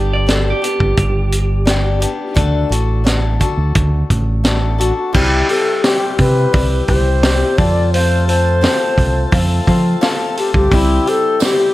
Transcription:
Already playing: fingered electric bass G1, steel-string acoustic guitar G3 B3 D4 G4, clean electric guitar G4
0.13 clean electric guitar D5
0.27 steel-string acoustic guitar G3 B3 D4 G4, clean electric guitar A4, snare, closed hi-hat
0.50 clean electric guitar G4
0.62 steel-string acoustic guitar G3 B3 D4 G4, closed hi-hat
0.66 clean electric guitar G4
0.80 fingered electric bass G1, kick
0.97 fingered electric bass G1, kick, closed hi-hat
1.32 closed hi-hat
1.65 steel-string acoustic guitar G3 B3 D4 G4, snare, closed hi-hat
2.00 steel-string acoustic guitar G3 B3 D4 G4, closed hi-hat
2.35 fingered electric bass D2, steel-string acoustic guitar D3 A3 D4 F#4 A4, kick, closed hi-hat
2.69 fingered electric bass A1, steel-string acoustic guitar D4 F#4 A4, closed hi-hat
3.04 steel-string acoustic guitar A3 D4 F#4 A4, snare, closed hi-hat
3.40 steel-string acoustic guitar D4 F#4 A4, kick, closed hi-hat
3.57 fingered electric bass D2
3.75 fingered electric bass D2, kick, closed hi-hat
4.10 fingered electric bass A1, kick, closed hi-hat
4.44 steel-string acoustic guitar A3 D4 F#4 A4, snare, closed hi-hat
4.78 steel-string acoustic guitar D4 F#4 A4, alto flute F#4, closed hi-hat
4.98 alto flute F#4
5.13 fingered electric bass C2, steel-string acoustic guitar C3 G3 C4 E4 G4, tonewheel organ G3 C4 E4 G4, alto flute E4, kick, crash
5.49 steel-string acoustic guitar C4 E4 G4, alto flute A4, open hi-hat
5.83 steel-string acoustic guitar C3 G3 C4 E4 G4, alto flute G4, snare, open hi-hat
6.18 fingered electric bass C3, alto flute B4, kick, open hi-hat
6.53 fingered electric bass C2, steel-string acoustic guitar G3 C4 E4 G4, kick, open hi-hat
6.87 fingered electric bass C2, steel-string acoustic guitar E4 G4, alto flute C5, kick, open hi-hat
6.92 steel-string acoustic guitar C4
7.23 steel-string acoustic guitar C3 G3 C4 E4 G4, snare, open hi-hat
7.58 fingered electric bass F2, tonewheel organ A3 C4 F4 A4, steel-string acoustic guitar C4 F4 A4, alto flute D5, kick, open hi-hat
7.93 steel-string acoustic guitar F3 C4 F4 A4, alto flute C5, open hi-hat
8.27 steel-string acoustic guitar C4 F4 A4, alto flute C5, open hi-hat
8.61 steel-string acoustic guitar F3 C4 F4 A4, snare, open hi-hat
8.97 fingered electric bass C2, kick, open hi-hat
9.31 fingered electric bass F2, steel-string acoustic guitar F3 C4 F4 A4, kick, open hi-hat
9.66 fingered electric bass F3, steel-string acoustic guitar C4 F4 A4, kick, open hi-hat
10.01 steel-string acoustic guitar F3 C4 F4 A4, snare, open hi-hat
10.35 steel-string acoustic guitar C4 F4 A4, alto flute G4, open hi-hat
10.54 fingered electric bass C2, alto flute G4, kick
10.71 fingered electric bass C2, steel-string acoustic guitar C3 G3 C4 E4 G4, tonewheel organ G3 C4 E4 G4, alto flute E4, kick, open hi-hat
11.06 steel-string acoustic guitar C4 E4 G4, alto flute A4, open hi-hat
11.39 steel-string acoustic guitar C3 G3 C4 E4 G4, snare, open hi-hat, tambourine
11.44 alto flute G4

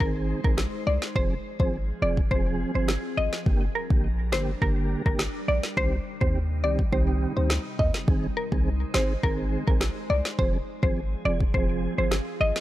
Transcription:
Already playing: ambient pad G#3 D#4 C5
0.00 808-style bass G#1, tonewheel organ D#3 C4 G#4, synth pluck A#4, kick
0.44 808-style bass A#1, tonewheel organ D#3 C4 G#4, synth pluck A#4, kick
0.58 cross-stick, snare
0.87 808-style bass C2, synth pluck D5
1.02 snare
1.15 808-style bass F1, tonewheel organ F3 C4 G#4, ambient pad F3 C4 G#4, synth pluck C5, kick
1.60 808-style bass G#1, tonewheel organ F3 C4 G#4, synth pluck C5, kick
2.02 808-style bass F1, tonewheel organ F3 C4 G#4, synth pluck D5
2.17 kick
2.31 808-style bass F1, tonewheel organ F3 C4 G#4, synth pluck C5, kick
2.75 808-style bass G1, tonewheel organ F3 C4 G#4, synth pluck C5
2.88 cross-stick, snare
3.17 808-style bass G#1, synth pluck D#5
3.33 snare
3.46 808-style bass G1, tonewheel organ D3 A#3 G4, ambient pad G3 D4 A#4, kick
3.75 synth pluck A#4
3.90 808-style bass A#1, tonewheel organ D3 A#3 G4, kick
4.32 808-style bass G1, tonewheel organ D3 A#3 G4, synth pluck C5, cross-stick, snare
4.61 808-style bass G1, tonewheel organ D3 A#3 G4, synth pluck A#4, kick
5.06 808-style bass G#1, tonewheel organ D3 A#3 G4, synth pluck A#4, kick
5.19 cross-stick, snare
5.48 808-style bass A#1, synth pluck D5
5.63 snare
5.77 808-style bass C2, ambient pad C3 G3 D#4, tonewheel organ D#3 C4 G4, synth pluck C5, kick
6.21 808-style bass D#2, tonewheel organ D#3 C4 G4, synth pluck C5, kick
6.63 808-style bass C2, tonewheel organ D#3 C4 G4, synth pluck D5
6.79 kick
6.92 808-style bass C2, tonewheel organ D#3 C4 G4, synth pluck C5, kick
7.36 808-style bass D2, tonewheel organ D#3 C4 G4, synth pluck C5
7.50 cross-stick, snare
7.79 808-style bass D#2, synth pluck D#5, kick
7.94 snare
8.08 808-style bass G#1, tonewheel organ D#3 C4 G#4, ambient pad G#3 D#4 C5, kick
8.37 synth pluck A#4
8.52 808-style bass C2, tonewheel organ D#3 C4 G#4, kick
8.94 808-style bass G#1, tonewheel organ D#3 C4 G#4, synth pluck C5, cross-stick, snare
9.23 808-style bass G#1, tonewheel organ D#3 C4 G#4, synth pluck A#4, kick
9.67 808-style bass A#1, tonewheel organ D#3 C4 G#4, synth pluck A#4, kick
9.81 cross-stick, snare
10.10 808-style bass C2, synth pluck D5
10.25 snare
10.39 808-style bass F1, tonewheel organ F3 C4 G#4, ambient pad F3 C4 G#4, synth pluck C5, kick
10.83 808-style bass G#1, tonewheel organ F3 C4 G#4, synth pluck C5, kick
11.25 808-style bass F1, tonewheel organ F3 C4 G#4, synth pluck D5
11.40 kick
11.54 808-style bass F1, tonewheel organ F3 C4 G#4, synth pluck C5, kick
11.98 808-style bass G1, tonewheel organ F3 C4 G#4, synth pluck C5
12.11 cross-stick, snare
12.40 808-style bass G#1, synth pluck D#5
12.56 snare

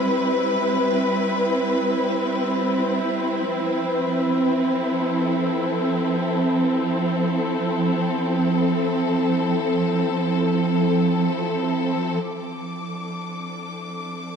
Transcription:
Already playing: string section G3 C4 E4 B4
3.52 string section F3
4.80 string section A4
12.22 violin section D6
12.77 string section D4

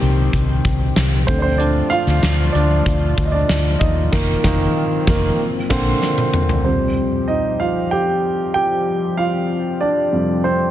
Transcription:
Already playing: analog synth pad A#2 D#3 C4 G4, grand piano D#3 A#3 D4 G4 G5
0.02 fingered electric bass C2, closed hi-hat
0.33 fingered electric bass C2, kick, closed hi-hat
0.65 fingered electric bass C2, kick, closed hi-hat
0.96 fingered electric bass C2, snare, closed hi-hat
1.27 fingered electric bass D2, grand piano D3 A3 C4 C5, analog synth pad F3 A3 F4, kick, closed hi-hat
1.38 grand piano C5 D5
1.45 grand piano C4
1.58 grand piano D4 D5, closed hi-hat
1.90 grand piano F4 F5, closed hi-hat
2.07 fingered electric bass D2, snare, closed hi-hat
2.23 fingered electric bass D2, snare, closed hi-hat
2.52 fingered electric bass D2, grand piano D4 D5, closed hi-hat
2.86 fingered electric bass D2, kick, closed hi-hat
3.18 fingered electric bass D2, kick, closed hi-hat
3.25 grand piano D#5
3.32 grand piano D4 D5
3.49 fingered electric bass D2, snare, closed hi-hat
3.79 fingered electric bass D#2, grand piano D#4 D#5, kick, closed hi-hat
4.12 fingered electric bass F1, grand piano D#3 A#3, analog synth pad D#3 A#3 C4, kick, snare, crash
4.44 fingered electric bass F1, grand piano D#3 A#3, kick, snare
5.07 fingered electric bass F1, grand piano D#3 A#3, kick, snare
5.39 analog synth pad D3
5.70 fingered electric bass A#1, grand piano D3 A#3 C4, kick, snare, crash
6.02 snare
6.18 high tom
6.33 mid tom
6.49 floor tom
6.64 grand piano F2 C3 G3 C4 C5, analog synth pad F3 G3 C4 G4
7.28 grand piano D#4 D#5
7.60 grand piano F4 F5
7.91 grand piano G4 G5
8.54 grand piano G4 G5
9.17 grand piano F4 F5
9.81 grand piano D4 D5
10.12 grand piano F2 C3 G3
10.44 grand piano C4 C5

